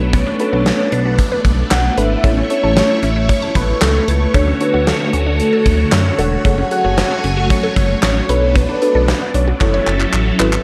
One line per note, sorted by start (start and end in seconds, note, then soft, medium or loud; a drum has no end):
0.00 0.24 B1 medium
0.00 6.41 A3 medium
0.00 2.22 B3 medium
0.00 0.29 D4 medium
0.00 2.22 D4 medium
0.00 0.29 F#4 medium
0.00 0.29 A4 medium
0.00 0.15 B4 medium
0.00 0.29 B4 medium
0.13 0.24 B3 loud
0.13 0.94 C#5 loud
0.13 kick loud
0.13 closed hi-hat medium
0.27 0.37 D4 medium
0.39 0.47 D4 medium
0.39 0.47 F#4 medium
0.39 0.47 A4 medium
0.39 0.47 B4 medium
0.39 closed hi-hat medium
0.53 0.71 B1 loud
0.53 1.08 D4 medium
0.53 1.08 F#4 medium
0.53 1.08 A4 medium
0.53 0.64 A4 medium
0.53 1.08 B4 medium
0.66 snare loud
0.66 closed hi-hat medium
0.79 0.90 B3 medium
0.92 1.20 B1 loud
0.92 1.03 D4 medium
0.92 1.45 B4 medium
0.92 closed hi-hat medium
1.05 1.16 F#4 medium
1.18 kick medium
1.18 closed hi-hat medium
1.32 1.43 B4 medium
1.45 1.63 B1 loud
1.45 kick medium
1.45 closed hi-hat medium
1.71 1.90 B1 medium
1.71 1.99 F#5 loud
1.71 snare loud
1.71 clap loud
1.71 closed hi-hat medium
1.98 2.16 G#1 medium
1.98 2.11 D4 medium
1.98 2.11 F#4 medium
1.98 2.11 A4 medium
1.98 2.09 B4 medium
1.98 2.11 B4 medium
1.98 2.52 E5 loud
1.98 closed hi-hat medium
2.24 2.42 A1 loud
2.24 2.35 A3 medium
2.24 2.38 C#4 medium
2.24 2.38 E4 medium
2.24 4.32 E4 medium
2.24 2.38 A4 medium
2.24 2.38 C#5 medium
2.24 8.25 C#5 medium
2.24 kick loud
2.24 closed hi-hat medium
2.37 2.48 C#4 medium
2.50 2.57 C#4 medium
2.50 2.57 E4 medium
2.50 2.57 A4 medium
2.50 2.57 C#5 medium
2.50 2.76 C#5 loud
2.50 closed hi-hat medium
2.63 2.82 A1 loud
2.63 3.18 C#4 medium
2.63 3.18 E4 medium
2.63 3.18 A4 medium
2.63 2.74 A4 medium
2.63 3.18 C#5 medium
2.76 3.05 C#5 loud
2.76 snare loud
2.76 closed hi-hat medium
2.90 3.01 A3 medium
3.03 3.30 A1 medium
3.03 3.14 C#4 medium
3.03 3.31 E5 loud
3.03 closed hi-hat medium
3.16 3.27 E4 medium
3.29 3.55 C#5 loud
3.29 kick medium
3.29 closed hi-hat medium
3.42 3.53 A5 medium
3.55 3.74 A1 loud
3.55 3.84 B4 medium
3.55 kick medium
3.55 closed hi-hat medium
3.82 4.00 C#2 medium
3.82 4.10 A4 medium
3.82 snare loud
3.82 clap loud
3.82 closed hi-hat medium
4.08 4.27 C#2 medium
4.08 4.36 B4 loud
4.08 4.19 A5 medium
4.08 closed hi-hat medium
4.34 4.53 D2 loud
4.34 6.43 D3 medium
4.34 4.45 A3 loud
4.34 4.48 D4 medium
4.34 4.48 F#4 medium
4.34 6.43 F#4 medium
4.34 4.48 A4 medium
4.34 4.48 C#5 medium
4.34 4.63 C#5 loud
4.34 kick loud
4.34 closed hi-hat medium
4.48 4.58 C#4 medium
4.61 4.68 D4 medium
4.61 4.68 F#4 medium
4.61 4.68 A4 medium
4.61 4.89 B4 loud
4.61 4.68 C#5 medium
4.61 closed hi-hat medium
4.74 4.92 D2 loud
4.74 5.29 D4 medium
4.74 5.29 F#4 medium
4.74 4.85 F#4 medium
4.74 5.29 A4 medium
4.74 5.29 C#5 medium
4.87 5.94 A4 loud
4.87 snare loud
4.87 closed hi-hat medium
5.00 5.11 A3 medium
5.13 5.41 D2 loud
5.13 5.24 C#4 medium
5.13 closed hi-hat medium
5.26 5.37 D4 medium
5.40 closed hi-hat medium
5.53 5.64 A4 medium
5.66 5.84 D2 loud
5.66 kick medium
5.66 closed hi-hat medium
5.92 6.11 F#2 loud
5.92 6.20 C#5 loud
5.92 snare loud
5.92 clap loud
5.92 closed hi-hat medium
6.19 6.37 E1 medium
6.19 6.32 D4 medium
6.19 6.32 F#4 medium
6.19 6.30 A4 medium
6.19 6.32 A4 medium
6.19 6.32 C#5 medium
6.19 6.71 F#5 loud
6.19 closed hi-hat medium
6.45 6.63 F#1 loud
6.45 8.27 F#3 medium
6.45 6.56 A3 medium
6.45 8.27 A3 medium
6.45 6.59 F#4 medium
6.45 6.59 G#4 medium
6.45 6.59 A4 medium
6.45 6.59 C#5 medium
6.45 8.27 G#5 medium
6.45 kick loud
6.45 closed hi-hat medium
6.58 6.69 C#4 medium
6.71 6.78 F#4 medium
6.71 6.78 G#4 medium
6.71 6.78 A4 medium
6.71 6.78 C#5 medium
6.71 7.46 F#5 loud
6.71 closed hi-hat medium
6.84 7.03 F#1 loud
6.84 7.39 F#4 medium
6.84 6.95 G#4 medium
6.84 7.39 G#4 medium
6.84 7.39 A4 medium
6.84 7.39 C#5 medium
6.98 snare loud
6.98 closed hi-hat medium
7.11 7.22 A3 medium
7.24 7.51 F#1 loud
7.24 7.35 C#4 medium
7.24 closed hi-hat medium
7.37 7.48 F#4 medium
7.50 7.99 C#5 loud
7.50 kick loud
7.50 closed hi-hat medium
7.63 7.74 A4 medium
7.76 7.95 F#1 loud
7.76 kick medium
7.76 closed hi-hat medium
8.03 8.21 A1 loud
8.03 8.57 C#5 medium
8.03 snare loud
8.03 clap loud
8.03 closed hi-hat medium
8.29 8.66 B1 loud
8.29 9.59 A3 medium
8.29 9.59 B3 medium
8.29 8.71 D4 medium
8.29 9.59 D4 medium
8.29 8.71 F#4 medium
8.29 8.71 A4 medium
8.29 8.40 B4 medium
8.29 8.71 B4 medium
8.29 closed hi-hat medium
8.55 8.66 B3 medium
8.55 9.36 B4 loud
8.55 kick loud
8.55 closed hi-hat medium
8.69 8.80 D4 medium
8.82 8.89 D4 medium
8.82 8.89 F#4 medium
8.82 8.89 A4 medium
8.82 8.89 B4 medium
8.82 closed hi-hat medium
8.95 9.13 B1 loud
8.95 9.50 D4 medium
8.95 9.50 F#4 medium
8.95 9.50 A4 medium
8.95 9.06 A4 medium
8.95 9.50 B4 medium
9.08 snare loud
9.08 closed hi-hat medium
9.21 9.32 B3 medium
9.34 9.53 B1 loud
9.34 9.45 D4 medium
9.34 9.87 C#5 medium
9.34 closed hi-hat medium
9.48 9.58 F#4 medium
9.61 9.79 F#1 loud
9.61 10.63 F#3 medium
9.61 10.63 C#4 medium
9.61 10.63 E4 medium
9.61 10.24 E4 medium
9.61 10.24 F#4 medium
9.61 10.63 A4 medium
9.61 10.24 A4 medium
9.61 10.24 C#5 medium
9.61 kick medium
9.61 clap medium
9.74 9.85 C#5 medium
9.87 10.05 F#1 loud
9.87 clap medium
10.00 clap medium
10.13 10.32 A1 loud
10.13 clap medium
10.40 10.58 G#1 loud
10.40 10.53 E4 medium
10.40 10.53 F#4 medium
10.40 10.53 A4 medium
10.40 10.53 B4 loud
10.40 10.51 C#5 medium
10.40 clap loud
10.53 clap medium